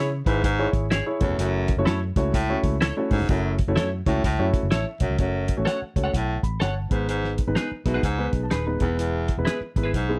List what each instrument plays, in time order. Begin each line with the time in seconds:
Already playing: fingered electric bass C#3
0.26 fingered electric bass G#1, baritone saxophone G#2, grand piano E4 G#4 B4, kick, closed hi-hat
0.44 baritone saxophone G#2, kick, closed hi-hat
0.59 grand piano E4 G#4 C#5
0.73 fingered electric bass G#1, kick, closed hi-hat
0.91 clean electric guitar E4 G#4 C#5, snare, closed hi-hat
1.06 grand piano E4 G#4 C#5
1.21 fingered electric bass F#1, baritone saxophone E2, grand piano A3 C#4 E4 F#4 C#5, kick, closed hi-hat
1.29 fingered electric bass F1
1.38 fingered electric bass F#1, baritone saxophone F#2, closed hi-hat
1.68 kick, closed hi-hat
1.77 fingered electric bass F#1, grand piano A3 C#4 E4 F#4 C#5
1.86 fingered electric bass F#2, clean electric guitar E4 A4 C#5, snare, closed hi-hat
2.16 fingered electric bass C#2, grand piano A3 C#4 E4 F#4 C#5, kick, snare, closed hi-hat
2.34 baritone saxophone A2, kick, closed hi-hat
2.49 grand piano A3 C#4 E4 F#4 C#5
2.63 fingered electric bass C#2, kick, closed hi-hat
2.81 clean electric guitar E4 A4 C#5, snare, closed hi-hat
2.97 grand piano A3 C#4 E4 F#4 C#5
3.11 baritone saxophone G#2, fingered electric bass G#2, kick, open hi-hat
3.20 fingered electric bass F1
3.29 fingered electric bass F#1, baritone saxophone F#2, grand piano A3 C#4 E4 F#4 C#5, kick, closed hi-hat
3.59 kick, closed hi-hat
3.68 fingered electric bass F#1, grand piano A3 C#4 E4 F#4 C#5
3.76 fingered electric bass F#2, clean electric guitar E4 A4 C#5, snare, closed hi-hat
4.06 fingered electric bass C#2, baritone saxophone A2, grand piano A3 C#4 E4 F#4 C#5, kick, closed hi-hat
4.24 fingered electric bass C#2, baritone saxophone A2, kick, closed hi-hat
4.39 fingered electric bass F#2, grand piano A3 C#4 E4 F#4 C#5
4.54 kick, closed hi-hat
4.63 fingered electric bass F#1
4.71 fingered electric bass A1, clean electric guitar E4 A4 C#5, grand piano E5, snare, closed hi-hat
5.00 fingered electric bass B1, baritone saxophone F#2, grand piano C#5, kick, closed hi-hat
5.10 fingered electric bass C#2
5.19 fingered electric bass F#1, baritone saxophone F#2, grand piano A3 C#4 F#4 C#5, kick, closed hi-hat
5.48 kick, closed hi-hat
5.57 fingered electric bass A1, grand piano A3 C#4 F#4 C#5
5.65 clean electric guitar A4 C#5 F#5, snare, closed hi-hat
5.82 muted fingered electric bass stroke
5.96 fingered electric bass C#2, grand piano A3 C#4 F#4 C#5, kick, closed hi-hat
6.04 clean electric guitar A4 C#5 F#5
6.13 fingered electric bass B1, baritone saxophone A2, grand piano F#5, kick, closed hi-hat
6.43 fingered electric bass A1, grand piano B5, kick, closed hi-hat
6.60 fingered electric bass G1, clean electric guitar A4 C#5 F#5, grand piano A5, snare, closed hi-hat
6.91 fingered electric bass G#1, baritone saxophone G#2, grand piano G#3 B3 D#4 B4, kick, closed hi-hat
7.09 baritone saxophone G#2, closed hi-hat
7.24 snare
7.38 kick, closed hi-hat
7.47 fingered electric bass G#1, grand piano G#3 B3 D#4 B4
7.55 clean electric guitar D#4 G#4 B4, snare, closed hi-hat
7.72 muted fingered electric bass stroke
7.86 fingered electric bass B1, baritone saxophone B2, grand piano G#3 B3 D#4 B4 E5, kick, snare, closed hi-hat
7.94 clean electric guitar D#4 G#4 B4, grand piano F#5
8.03 fingered electric bass C#2, baritone saxophone G#2, grand piano G#5, kick, closed hi-hat
8.19 grand piano G#3 B3 D#4 B4
8.33 fingered electric bass B1, kick, closed hi-hat
8.43 grand piano A5
8.51 fingered electric bass D#1, clean electric guitar D#4 G#4 B4, grand piano B5, snare, closed hi-hat
8.66 grand piano G#3 B3 D#4 B4
8.80 fingered electric bass E1, baritone saxophone E2, grand piano G#3 B3 E4 B4, kick, closed hi-hat
8.99 baritone saxophone E2, closed hi-hat
9.28 kick, closed hi-hat
9.38 fingered electric bass E1, grand piano G#3 B3 E4 B4
9.45 clean electric guitar E4 G#4 B4, snare, closed hi-hat
9.61 muted fingered electric bass stroke
9.76 fingered electric bass G#1, grand piano G#3 B3 E4 B4, kick, closed hi-hat
9.83 clean electric guitar E4 G#4 B4
9.93 fingered electric bass B1, baritone saxophone G#2, kick, closed hi-hat
10.09 grand piano G#3 B3 E4 G#4